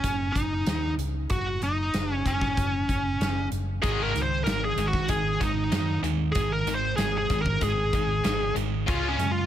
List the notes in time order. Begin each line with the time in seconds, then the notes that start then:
Already playing: C#4
0.04 F#1, kick, closed hi-hat
0.32 F#1 D#4, kick, closed hi-hat
0.66 D#2, snare, closed hi-hat
0.97 C#2, closed hi-hat
1.30 F#1 F#4, kick, closed hi-hat
1.62 F#1 D#4, closed hi-hat
1.94 F#1, snare, closed hi-hat
2.12 C#4
2.26 F#1 C#4, kick, closed hi-hat
2.41 kick, snare
2.57 F#1, kick, closed hi-hat
2.89 F#1, kick, closed hi-hat
3.20 F#1, snare, closed hi-hat
3.51 F#1, closed hi-hat
3.82 G#1 G#2 D#3 G#3 G#4, kick, closed hi-hat
4.03 A#4
4.15 C#2 G#2 D#3, closed hi-hat
4.22 C5
4.44 G#1 G#2 D#3 A#4, snare, closed hi-hat
4.65 G#4
4.76 G#1 G#2 D#3, closed hi-hat
4.87 F#4
4.93 kick, snare
5.08 G#1 G#2 D#3 G#4, kick, closed hi-hat
5.40 G#1 G#2 D#3 D#4, kick, closed hi-hat
5.71 F#2 G#2 D#3, snare, closed hi-hat
6.02 D#2 G#2 D#3, closed hi-hat
6.32 G#1 G#2 D#3 G#4, kick, closed hi-hat
6.53 A#4
6.65 G#1 G#2 D#3, closed hi-hat
6.75 C5
6.97 G#1 G#2 D#3 G#4, snare, closed hi-hat
7.18 G#4
7.30 G#1 G#2 D#3, kick, closed hi-hat
7.42 A#4, kick
7.61 G#1 G#2 D#3 G#4, kick, closed hi-hat
7.93 G#1 G#2 D#3, kick, closed hi-hat
8.24 G#1 G#2 D#3, snare, closed hi-hat
8.55 G#1 G#2 D#3, closed hi-hat
8.86 C#2 C#3 G#3 C#4 F4, kick, closed hi-hat
9.08 C#4
9.18 F#2 C#3 G#3, closed hi-hat
9.32 F4